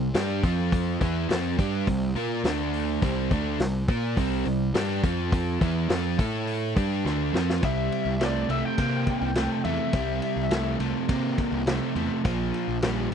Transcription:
Already playing: C2
0.14 G2 G3 D4 G4, snare, open hi-hat
0.43 F2 F3 C4 F4, kick, open hi-hat
0.72 kick, open hi-hat
1.00 E2 E3 B3 E4, kick, open hi-hat
1.29 F2 F3 C4 F4, snare, open hi-hat
1.58 G2 G3 D4 G4, kick, open hi-hat
1.87 C2 C3 G3, kick, open hi-hat
2.15 A#2 A#3 F4 A#4, open hi-hat
2.44 D2 D3 A3 D4, snare, open hi-hat
2.73 open hi-hat
3.02 C2 C3 G3 C4, kick, open hi-hat
3.31 D2 D3 A3 D4, kick, open hi-hat
3.59 C2 C3 G3, snare, open hi-hat
3.88 A#2 A#3 F4 A#4, kick, open hi-hat
4.17 C2 C3 G3 C4, kick, open hi-hat
4.45 C2 C3 G3, open hi-hat
4.74 G2 G3 D4 G4, snare, open hi-hat
5.03 F2 F3 C4 F4, kick, open hi-hat
5.32 kick, open hi-hat
5.61 E2 E3 B3 E4, kick, open hi-hat
5.89 F2 F3 C4 F4, snare, open hi-hat
6.19 A2 A3 E4 A4, kick, open hi-hat
6.47 open hi-hat
6.76 G2 G3 D4 G4, kick, open hi-hat
7.05 D2 D3 A3 D4, snare
7.33 F2 F3 C4 F4, snare
7.50 snare
7.62 C2 C3 G3 E5, kick, ride
7.92 ride
8.05 C2
8.21 C3 A3, snare, ride
8.25 D5
8.49 C2 C3 A3 E5, ride
8.65 G5
8.77 C3 A#3, kick, ride
9.07 kick, ride
9.21 C2
9.35 C3 A3, snare, ride
9.64 E2 C3 A3 E5, ride
9.93 C2 C3 G3, kick, ride
10.22 ride
10.36 C2
10.51 C3 A3, snare, ride
10.79 C2 C3 A3, ride
11.08 C3 A#3, kick, ride
11.38 kick, ride
11.52 C2
11.67 C3 A3, snare, ride
11.95 E2 C3 A3, ride
12.24 A#1 A#2 F3, kick, ride
12.54 ride
12.68 A#1
12.82 A#2 G3, snare, ride
13.11 A#1

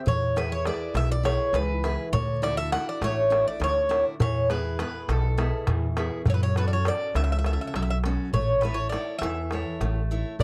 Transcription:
0.06 E2 E3 C#5, darbuka dum
0.22 darbuka tek
0.36 E4 G#4 B4, darbuka tek
0.52 C#5, darbuka tek
0.65 E4 G#4 B4 D5, darbuka tek
0.94 B1 B2 E5, darbuka tek
1.12 D5
1.23 E4 G#4 B4 C#5, darbuka tek
1.53 C#2 E3 B4, darbuka tek
1.69 darbuka tek
1.84 E4 G#4 B4, darbuka tek
2.00 darbuka tek
2.13 D2 D3 C#5, darbuka dum
2.28 darbuka tek
2.42 D4 E4 F#4 D5, darbuka tek
2.57 E5, darbuka tek
2.72 D4 E4 F#4 F#5, darbuka tek
2.89 D5
3.01 A1 A3 C#5, darbuka tek
3.30 D4 E4 F#4, darbuka tek
3.48 D5
3.60 D2 D3 C#5, darbuka tek
3.76 darbuka tek
3.89 D4 E4 F#4, darbuka tek
4.06 darbuka tek
4.20 E2 E3 C#5, darbuka dum
4.50 B3 E4 G#4 B4, darbuka tek
4.65 darbuka tek
4.79 B3 E4 G#4 B4, darbuka tek
4.94 darbuka tek
5.08 B1 B2 A4, darbuka tek
5.23 darbuka tek
5.38 B3 E4 G#4, darbuka tek
5.67 E2 E3, darbuka tek, darbuka dum
5.97 B3 E4 G#4, darbuka tek
6.11 darbuka tek
6.26 F#2 F#3, darbuka dum
6.30 C#5
6.34 B4
6.41 C#5, darbuka tek
6.56 C#4 F#4 A4 B4, darbuka tek
6.68 D5, darbuka tek
6.73 C#5
6.85 C#4 F#4 A4 D5, darbuka tek
7.15 C#2 C#3 E5, darbuka tek
7.24 E5
7.32 E5
7.39 E5
7.44 C#4 F#4 A4 E5, darbuka tek
7.53 E5
7.61 E5
7.67 E5
7.74 B1 F#3 E5, darbuka tek
7.82 E5
7.89 E5, darbuka tek
8.04 C#4 F#4 A4, darbuka tek
8.19 darbuka tek
8.33 A1 A3 C#5, darbuka dum
8.48 darbuka tek
8.61 E4 A4 B4 C#5, darbuka tek
8.74 C#5, darbuka tek
8.89 E4 A4 C#5 D5, darbuka tek
9.19 E2 E5, darbuka tek
9.23 E3
9.51 E4 A4 C#5, darbuka tek
9.81 A1 A3, darbuka tek
9.96 darbuka tek
10.11 E4 A4 C#5
10.26 darbuka tek
10.39 B1 B3, darbuka dum

